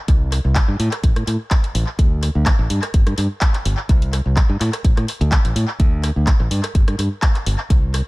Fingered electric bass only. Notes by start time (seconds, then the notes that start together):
0.08 C2
0.45 C2
0.68 G2
0.79 A2
1.03 A1
1.16 A2
1.27 A2
1.75 A1
1.99 D2
2.35 D2
2.59 A1
2.70 G2
2.94 G1
3.07 G2
3.18 G2
3.65 G1
3.89 C2
4.26 C2
4.50 G2
4.61 A2
4.84 A1
4.97 A2
5.21 D2
5.45 A1
5.56 A2
5.80 D2
6.16 D2
6.40 A1
6.51 G2
6.75 G1
6.88 G2
6.99 G2
7.46 G1
7.70 C2